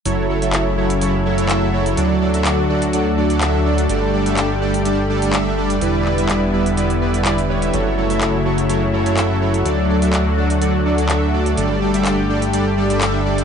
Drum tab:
HH |x--xx--xx--xx--x|x--xx--xx--xx--x|x--xx--xx--xx--x|x--xx--xxx-xxx-x|
CP |----x-------x---|----x-------x---|----x-------x---|--x-x-------x---|

HH |x--xx--xx--xx--x|x--xx--xx--xx--x|x--xx--xx--xx--x|
CP |----x-------x---|----x-------x---|----x-------x---|